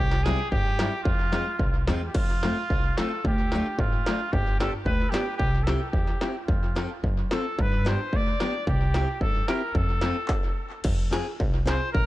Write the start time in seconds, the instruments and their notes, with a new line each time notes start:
Already playing: upright bass C2, trumpet G4
0.11 snare
0.23 steel-string acoustic guitar G3 C4, trumpet G#4, snare
0.28 steel-string acoustic guitar E4
0.51 upright bass G2, trumpet G4, kick
0.79 steel-string acoustic guitar G3 C4 E4, snare
1.03 upright bass F2, trumpet F4, kick
1.32 steel-string acoustic guitar G#3 C4 F4, snare
1.59 upright bass C2, kick
1.87 upright bass E2, steel-string acoustic guitar G#3 C4 F4, snare
2.06 trumpet G4
2.14 upright bass F2, trumpet F4, kick, crash
2.43 steel-string acoustic guitar A3 C4 F4, snare
2.70 upright bass C2, kick
2.97 steel-string acoustic guitar A3 C4 F4, trumpet A4, snare
3.24 upright bass D2, trumpet G4, kick
3.52 steel-string acoustic guitar A3 D4 F4, snare
3.78 upright bass G#1, trumpet F4, kick
4.06 steel-string acoustic guitar A3 D4 F4, snare
4.33 upright bass G1, trumpet G4, kick
4.59 steel-string acoustic guitar B3 D4 G4, trumpet A4, snare
4.85 upright bass D2, trumpet B4, kick
5.10 steel-string acoustic guitar B3 D4, trumpet G4, snare
5.14 steel-string acoustic guitar G4
5.37 upright bass C2, trumpet G4, kick
5.63 steel-string acoustic guitar C4, trumpet A4, snare
5.67 steel-string acoustic guitar E4 G4
5.91 upright bass E2, trumpet G4, kick
6.07 snare
6.21 steel-string acoustic guitar C4 E4 G4, snare
6.44 trumpet F4
6.48 upright bass F2, kick
6.75 steel-string acoustic guitar C4 F4 A4, snare
7.03 upright bass F#2, kick
7.31 steel-string acoustic guitar C4 F4 A4, trumpet A4, snare
7.59 upright bass G2, trumpet B4, kick
7.85 steel-string acoustic guitar B3 D4 G4, trumpet C5, snare
8.13 upright bass D2, trumpet D5, kick
8.40 steel-string acoustic guitar B3 D4 G4, snare
8.67 upright bass C2, trumpet G4, kick
8.94 steel-string acoustic guitar C4 E4 G4, snare
9.21 upright bass G2, trumpet A4, kick
9.48 steel-string acoustic guitar C4 E4 G4, trumpet A#4, snare
9.75 upright bass F2, trumpet A4, kick
10.01 steel-string acoustic guitar C4 F4 A4, snare
10.28 kick, clap
10.84 upright bass F2, kick, crash
11.11 steel-string acoustic guitar C4 F4 G#4, snare, hi-hat pedal
11.40 upright bass C2, kick
11.65 steel-string acoustic guitar C4 F4 G#4, trumpet C5, snare, hi-hat pedal
11.92 upright bass A#1, trumpet A#4, kick